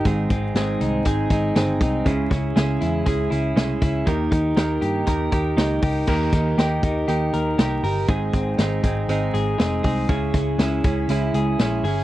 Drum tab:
CC |--------|--------|--------|x-------|
HH |xxxxxxxx|xxxxxxxx|xxxxxxxo|-xxxxxxo|
SD |--o---o-|-oo---o-|--o---o-|-oo---o-|
BD |oo--oo-o|oo--o--o|oo--oo-o|oo-o----|

CC |--------|--------|
HH |xxxxxxxo|xxxxxxxo|
SD |--o---o-|-oo---o-|
BD |oo-o---o|oo-o----|